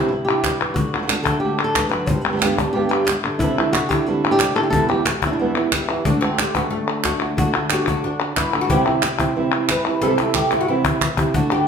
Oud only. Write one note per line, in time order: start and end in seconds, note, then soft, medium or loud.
6.05 6.20 D4 medium
6.21 6.55 C4 medium
6.55 6.60 B3 medium
6.70 7.05 A3 medium
7.05 7.20 F#4 medium
7.71 8.04 F#4 medium
8.04 8.37 D4 medium
8.37 8.61 E4 medium
8.61 8.69 F#4 medium
8.70 9.01 G4 loud
9.71 10.01 B4 loud
10.02 10.33 A4 loud
10.34 10.61 G4 medium
10.61 10.68 F#4 medium
10.68 10.99 E4 medium
11.51 11.67 G4 medium